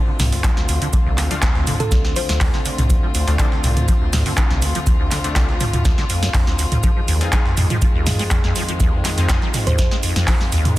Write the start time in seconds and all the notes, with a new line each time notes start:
Already playing: D2 D3 C4 F4
0.08 D3
0.20 C2, snare, mid tom, open hi-hat, shaker
0.32 D2, snare, open hi-hat
0.44 F3, kick, snare, clap, closed hi-hat, shaker
0.57 D2, snare
0.69 D2, open hi-hat, shaker
0.82 D3, closed hi-hat
0.93 D3, kick, closed hi-hat, shaker
1.06 C2
1.18 D2, snare, clap, open hi-hat, shaker
1.31 F3 A3 C4 D4 F4, closed hi-hat
1.42 D2, kick, snare, clap, closed hi-hat, shaker
1.55 D2, snare
1.67 D3, mid tom, open hi-hat, shaker
1.80 D3 A4, closed hi-hat, mid tom
1.92 C2, kick, snare, closed hi-hat, shaker
2.05 D2, snare
2.16 F3 C5, open hi-hat, shaker
2.29 D2, snare, closed hi-hat
2.41 kick, snare, clap, closed hi-hat, open hi-hat
2.54 D3, snare
2.65 D3, open hi-hat, shaker
2.78 C2, closed hi-hat, mid tom
2.90 D2, kick, closed hi-hat, shaker
3.03 F3
3.15 D2, open hi-hat, shaker
3.27 D2 A3 C4 D4 F4, snare, closed hi-hat
3.39 D3 A3 C4 D4 F4, kick, snare, clap, closed hi-hat, shaker
3.52 D3, snare
3.64 C2, mid tom, open hi-hat, shaker
3.77 D2, closed hi-hat, mid tom
3.88 F3, kick, closed hi-hat, shaker
4.01 D2
4.13 D2, snare, mid tom, open hi-hat, shaker
4.26 D3, snare, open hi-hat
4.37 D3, kick, snare, clap, closed hi-hat, shaker
4.51 C2, snare
4.62 D2, open hi-hat, shaker
4.75 F3, closed hi-hat
4.87 D2, kick, closed hi-hat, shaker
5.00 D2
5.11 D3, snare, clap, open hi-hat, shaker
5.24 D3 A3 C4 D4 F4, closed hi-hat
5.36 C2 A3 C4 D4 F4, kick, snare, clap, closed hi-hat, shaker
5.49 D2, snare
5.61 F3, mid tom, open hi-hat, shaker
5.73 D2, closed hi-hat, mid tom
5.85 D2, kick, snare, closed hi-hat, shaker
5.98 D3, snare
6.10 F2, open hi-hat, shaker
6.23 G2, snare, closed hi-hat
6.34 F2, kick, snare, clap, closed hi-hat, open hi-hat
6.47 D2, snare
6.59 D2, open hi-hat, shaker
6.72 D2, closed hi-hat, mid tom
6.83 F2 D#3 F3 G#3, kick, closed hi-hat, shaker
6.96 F3
7.08 D#2, open hi-hat, shaker
7.21 F2 C4 D#4 F4 G#4, snare, closed hi-hat
7.32 G#3 C4 D#4 F4 G#4, kick, snare, clap, closed hi-hat, shaker
7.46 F2, snare
7.57 F2, mid tom, open hi-hat, shaker
7.70 F3, closed hi-hat, mid tom
7.82 F3, kick, closed hi-hat, shaker
7.95 D#2
8.06 F2, snare, mid tom, open hi-hat, shaker
8.19 G#3, snare, open hi-hat
8.31 F2, kick, snare, clap, closed hi-hat, shaker
8.44 F2, snare
8.56 F3, open hi-hat, shaker
8.68 F3, closed hi-hat
8.80 D#2, kick, closed hi-hat, shaker
8.93 F2
9.05 G#3, snare, clap, open hi-hat, shaker
9.18 F2 C4 D#4 F4 G#4, closed hi-hat
9.29 C4 D#4 F4 G#4, kick, snare, clap, closed hi-hat, shaker
9.42 F3, snare
9.54 F3, mid tom, open hi-hat, shaker
9.67 D#2 C5, closed hi-hat, mid tom
9.79 F2, kick, snare, closed hi-hat, shaker
9.91 G#3, snare
10.03 F2, open hi-hat, shaker
10.16 F2, snare, closed hi-hat
10.28 F3, kick, snare, clap, closed hi-hat, open hi-hat
10.41 F3, snare
10.52 D#2, open hi-hat, shaker
10.65 F2, closed hi-hat, mid tom